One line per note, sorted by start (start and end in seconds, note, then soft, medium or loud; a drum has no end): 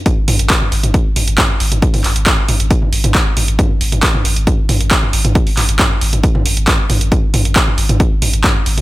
0.06 kick loud
0.06 closed hi-hat medium
0.06 mid tom medium
0.17 0.27 G#1 medium
0.28 0.39 G#1 loud
0.28 mid tom medium
0.28 open hi-hat loud
0.39 0.50 G#1 medium
0.39 closed hi-hat medium
0.50 kick loud
0.50 clap loud
0.50 closed hi-hat medium
0.61 0.71 G#1 medium
0.61 mid tom medium
0.72 0.83 G#1 loud
0.72 open hi-hat loud
0.83 0.94 G#1 medium
0.83 closed hi-hat medium
0.83 mid tom medium
0.94 kick loud
0.94 closed hi-hat medium
1.06 1.16 G#1 medium
1.16 1.27 G#1 loud
1.16 mid tom medium
1.16 open hi-hat loud
1.28 1.38 G#1 medium
1.28 closed hi-hat medium
1.38 kick loud
1.38 clap loud
1.38 closed hi-hat medium
1.38 mid tom medium
1.50 1.60 G#1 medium
1.60 1.71 G#1 loud
1.60 open hi-hat loud
1.72 1.82 G#1 medium
1.72 closed hi-hat medium
1.72 mid tom medium
1.82 kick loud
1.82 closed hi-hat medium
1.94 2.04 G#1 medium
1.94 mid tom medium
1.94 open hi-hat medium
2.04 2.15 G#1 loud
2.04 clap soft
2.04 open hi-hat loud
2.16 2.26 G#1 medium
2.16 closed hi-hat medium
2.26 kick loud
2.26 clap loud
2.26 closed hi-hat medium
2.26 mid tom medium
2.38 2.48 G#1 medium
2.48 2.59 G#1 loud
2.48 mid tom medium
2.48 open hi-hat loud
2.60 2.70 G#1 medium
2.60 closed hi-hat medium
2.71 kick loud
2.71 closed hi-hat medium
2.82 2.92 G#1 medium
2.82 mid tom medium
2.93 3.03 G#1 loud
2.93 open hi-hat loud
3.04 3.14 G#1 medium
3.04 closed hi-hat medium
3.04 mid tom medium
3.15 kick loud
3.15 clap loud
3.15 closed hi-hat medium
3.26 3.36 G#1 medium
3.37 3.48 G#1 loud
3.37 mid tom medium
3.37 open hi-hat loud
3.48 3.59 G#1 medium
3.48 closed hi-hat medium
3.59 kick loud
3.59 closed hi-hat medium
3.59 mid tom medium
3.70 3.80 G#1 medium
3.81 3.92 G#1 loud
3.81 open hi-hat loud
3.92 4.03 G#1 medium
3.92 closed hi-hat medium
3.92 mid tom medium
4.03 kick loud
4.03 clap loud
4.03 closed hi-hat medium
4.14 4.24 G#1 medium
4.14 mid tom medium
4.25 4.36 G#1 medium
4.25 open hi-hat loud
4.36 4.47 G#1 medium
4.36 closed hi-hat medium
4.47 kick loud
4.47 closed hi-hat medium
4.47 mid tom medium
4.58 4.68 G#1 medium
4.69 4.80 G#1 loud
4.69 mid tom medium
4.69 open hi-hat loud
4.81 4.91 G#1 medium
4.81 closed hi-hat medium
4.91 kick loud
4.91 clap loud
4.91 closed hi-hat medium
5.03 5.13 G#1 medium
5.03 mid tom medium
5.13 5.24 G#1 loud
5.13 open hi-hat loud
5.25 5.35 G#1 medium
5.25 closed hi-hat medium
5.25 mid tom medium
5.35 kick loud
5.35 closed hi-hat medium
5.47 5.57 G#1 medium
5.47 open hi-hat medium
5.57 5.68 G#1 loud
5.57 clap soft
5.57 mid tom medium
5.57 open hi-hat loud
5.69 5.79 G#1 medium
5.69 closed hi-hat medium
5.79 kick loud
5.79 clap loud
5.79 closed hi-hat medium
5.79 mid tom loud
5.91 6.01 G#1 medium
6.01 6.12 G#1 loud
6.01 open hi-hat loud
6.13 6.23 G#1 medium
6.13 closed hi-hat medium
6.13 mid tom medium
6.23 kick loud
6.23 closed hi-hat medium
6.35 6.45 G#1 medium
6.35 mid tom loud
6.46 6.56 G#1 medium
6.46 open hi-hat loud
6.57 6.67 G#1 medium
6.57 closed hi-hat medium
6.68 kick loud
6.68 clap loud
6.68 closed hi-hat medium
6.68 mid tom medium
6.79 6.89 G#1 medium
6.90 7.01 G#1 loud
6.90 mid tom medium
6.90 open hi-hat loud
7.01 7.12 G#1 medium
7.01 closed hi-hat medium
7.12 kick loud
7.12 closed hi-hat medium
7.12 mid tom medium
7.23 7.33 G#1 medium
7.34 7.45 G#1 loud
7.34 mid tom loud
7.34 open hi-hat loud
7.45 7.56 G#1 medium
7.45 closed hi-hat medium
7.56 kick loud
7.56 clap loud
7.56 closed hi-hat medium
7.67 7.77 G#1 medium
7.67 mid tom medium
7.78 7.89 G#1 medium
7.78 open hi-hat loud
7.89 8.00 G#1 medium
7.89 closed hi-hat medium
7.89 mid tom medium
8.00 kick loud
8.00 closed hi-hat medium
8.11 8.21 G#1 medium
8.22 8.33 G#1 loud
8.22 mid tom medium
8.22 open hi-hat loud
8.33 8.44 G#1 medium
8.33 closed hi-hat medium
8.44 kick loud
8.44 clap loud
8.44 closed hi-hat medium
8.44 mid tom medium
8.55 8.65 G#1 medium
8.66 8.77 G#1 loud
8.66 open hi-hat loud
8.78 8.81 G#1 medium
8.78 closed hi-hat medium
8.78 mid tom medium